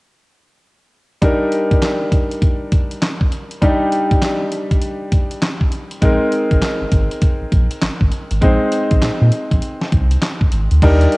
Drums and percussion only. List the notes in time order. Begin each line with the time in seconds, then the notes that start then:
1.22 kick, closed hi-hat
1.52 closed hi-hat
1.71 kick, closed hi-hat
1.82 snare, clap, closed hi-hat
2.12 kick, closed hi-hat
2.31 closed hi-hat
2.42 kick, closed hi-hat
2.72 kick, closed hi-hat
2.91 closed hi-hat
3.02 snare, clap, closed hi-hat
3.21 kick
3.32 closed hi-hat
3.51 closed hi-hat
3.62 kick, closed hi-hat
3.92 closed hi-hat
4.11 kick, closed hi-hat
4.22 snare, clap, closed hi-hat
4.52 closed hi-hat
4.71 kick, closed hi-hat
4.82 closed hi-hat
5.12 kick, closed hi-hat
5.31 closed hi-hat
5.42 snare, clap, closed hi-hat
5.61 kick
5.72 closed hi-hat
5.91 closed hi-hat
6.02 kick, closed hi-hat
6.32 closed hi-hat
6.51 kick, closed hi-hat
6.62 snare, clap, closed hi-hat
6.92 kick, closed hi-hat
7.11 closed hi-hat
7.22 kick, closed hi-hat
7.52 kick, closed hi-hat
7.71 closed hi-hat
7.82 snare, clap, closed hi-hat
8.01 kick
8.12 closed hi-hat
8.31 closed hi-hat
8.42 kick, closed hi-hat
8.72 closed hi-hat
8.91 kick, closed hi-hat
9.02 snare, clap, closed hi-hat
9.32 closed hi-hat
9.51 kick, closed hi-hat
9.62 closed hi-hat
9.81 snare
9.92 kick, closed hi-hat
10.11 closed hi-hat
10.22 snare, clap, closed hi-hat
10.41 kick
10.52 closed hi-hat
10.71 closed hi-hat
10.82 kick, closed hi-hat, crash
11.01 closed hi-hat
11.12 closed hi-hat